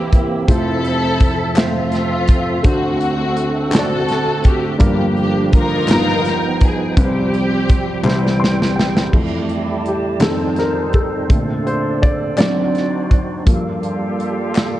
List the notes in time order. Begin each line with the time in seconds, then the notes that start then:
Already playing: C2 C3 E3 A#3 C4 E4 G4 A#4 C5
0.12 kick, closed hi-hat
0.47 F1 F2 F3 A3 C4 E4 A4 C5 E5, kick, closed hi-hat
0.52 A4
0.85 closed hi-hat
1.20 kick, closed hi-hat
1.56 A3 C4 F4 C5 E5, snare, clap, closed hi-hat
1.60 F4
1.92 snare, closed hi-hat
2.28 kick, closed hi-hat
2.63 D2 D3 A3 C4 D4 F#4 C5, kick, closed hi-hat
2.68 F#4
3.01 closed hi-hat
3.37 closed hi-hat
3.71 A3 C4 D4 F#4 A4 C5, clap, closed hi-hat
3.75 D5, snare
4.09 snare, closed hi-hat
4.44 G4, kick, closed hi-hat
4.78 G1 G2 F3 G3 A#3 D4 F4 G4 A#4, kick, closed hi-hat
5.17 closed hi-hat
5.53 D#4 F4 A#4, kick, closed hi-hat
5.87 G1 G2 G3 B3 D#4 F4 A#4, snare, clap, closed hi-hat
5.91 F3 G5
5.96 B3
6.25 snare, closed hi-hat
6.61 kick, closed hi-hat
6.65 G#4
6.97 C2 C3 G3 C4 F4 B4, kick, closed hi-hat
7.01 G4 C5
7.34 closed hi-hat
7.69 kick, closed hi-hat
8.03 C2 C3 G3 C4 E4 C5, clap
8.08 E3, snare
8.26 snare
8.40 C6
8.44 snare
8.62 snare
8.76 G5, snare
8.97 snare
9.12 F2 E3 G3 A3 C4 E4 G4 A5, kick, crash
9.49 closed hi-hat
9.86 G4, closed hi-hat
10.19 F2 D#3 C4 D#4 F4 A4 C5, snare, clap, closed hi-hat
10.56 A#4, snare, closed hi-hat
10.93 A4, kick, closed hi-hat
11.28 A#2 D3 A3 D4 A4 D5, kick, closed hi-hat
11.67 C5, closed hi-hat
12.02 D5, kick, closed hi-hat
12.37 D3 F#3 C4 D4 D#4 F#4 C5 D5, snare, clap, closed hi-hat
12.75 snare, closed hi-hat
13.11 kick, closed hi-hat
13.45 G2 F3 G3 A#3 F4 G4 A4 F5, kick, closed hi-hat
13.83 closed hi-hat
14.20 closed hi-hat
14.55 snare, clap, closed hi-hat